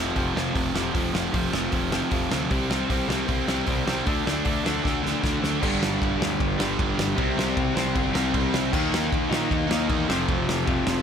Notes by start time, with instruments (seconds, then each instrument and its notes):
Already playing: overdriven electric guitar F2 C3 F3
0.15 picked electric bass F1, overdriven electric guitar F2 C3 F3, kick, open hi-hat
0.35 picked electric bass F1, overdriven electric guitar F2 C3 F3, snare
0.54 picked electric bass F1, overdriven electric guitar F2 C3 F3, kick, open hi-hat
0.74 picked electric bass F1, overdriven electric guitar F2 C3 F3, snare
0.94 picked electric bass F1, overdriven electric guitar F2 C3 F3, kick, open hi-hat
1.14 picked electric bass F1, overdriven electric guitar F2 C3 F3, snare
1.33 picked electric bass F1, overdriven electric guitar F2 C3 F3, kick, open hi-hat
1.52 picked electric bass F1, overdriven electric guitar F2 C3 F3, snare
1.72 picked electric bass F1, overdriven electric guitar F2 C3 F3, kick, open hi-hat
1.92 overdriven electric guitar F2 C3 F3, snare
2.11 picked electric bass F1, overdriven electric guitar F2 C3 F3, kick, open hi-hat
2.30 picked electric bass D2, overdriven electric guitar F2 C3 F3, snare
2.51 picked electric bass C2, overdriven electric guitar C3 G3 C4, kick, open hi-hat
2.70 picked electric bass C2, overdriven electric guitar C3 G3 C4, snare
2.90 picked electric bass C2, overdriven electric guitar C3 G3 C4, kick, open hi-hat
3.08 picked electric bass C2, overdriven electric guitar C3 G3 C4, snare
3.28 picked electric bass C2, overdriven electric guitar C3 G3 C4, kick, open hi-hat
3.48 picked electric bass C2, overdriven electric guitar C3 G3 C4, snare
3.66 picked electric bass C2, overdriven electric guitar C3 G3 C4, kick, open hi-hat
3.87 picked electric bass C2, overdriven electric guitar C3 G3 C4, snare
4.06 picked electric bass D2, overdriven electric guitar D3 A3 D4, kick, open hi-hat
4.26 picked electric bass D2, overdriven electric guitar D3 A3 D4, snare
4.45 picked electric bass D2, overdriven electric guitar D3 A3 D4, kick, open hi-hat
4.65 picked electric bass D2, overdriven electric guitar D3 A3 D4, snare
4.84 picked electric bass D2, overdriven electric guitar D3 A3 D4, kick, snare
5.03 overdriven electric guitar D3 A3 D4, snare
5.23 picked electric bass D2, overdriven electric guitar D3 A3 D4, kick, snare
5.42 picked electric bass D2, overdriven electric guitar D3 A3 D4, snare
5.60 picked electric bass G1, overdriven electric guitar G2 D3 G3, kick, crash
5.81 picked electric bass G1, snare
6.02 picked electric bass G1, kick, ride
6.17 picked electric bass D2, overdriven electric guitar G2 D3 G3
6.22 snare
6.40 picked electric bass G1, kick, ride
6.58 picked electric bass G1, overdriven electric guitar G2 D3 G3, snare
6.78 picked electric bass G1, overdriven electric guitar G2 D3 G3, kick, ride
6.98 picked electric bass G1, snare
7.16 picked electric bass C2, overdriven electric guitar C3 G3 C4, kick, ride
7.37 picked electric bass C2, snare
7.57 picked electric bass C2, kick, ride
7.74 picked electric bass C2, overdriven electric guitar C3 G3 C4, snare
7.96 picked electric bass G1, kick, ride
8.13 picked electric bass C2, overdriven electric guitar C3 G3 C4, snare
8.33 picked electric bass C2, overdriven electric guitar C3 G3 C4, kick, ride
8.53 picked electric bass C2, snare
8.72 picked electric bass D#2, overdriven electric guitar D#3 A#3 D#4, kick, crash
8.92 picked electric bass D#2, snare
9.12 picked electric bass D#2, kick, ride
9.29 picked electric bass A#2, overdriven electric guitar D#3 A#3 D#4, snare
9.51 picked electric bass D#2, kick, ride
9.67 picked electric bass D#2, overdriven electric guitar D#3 A#3 D#4, snare
9.88 picked electric bass E2, overdriven electric guitar D#3 A#3 D#4, kick, ride
10.08 picked electric bass F1, overdriven electric guitar F2 C3 F3, snare
10.28 picked electric bass F1, kick, ride
10.48 picked electric bass F1, snare
10.65 picked electric bass F1, overdriven electric guitar F2 C3 F3, kick, ride
10.86 picked electric bass F1, snare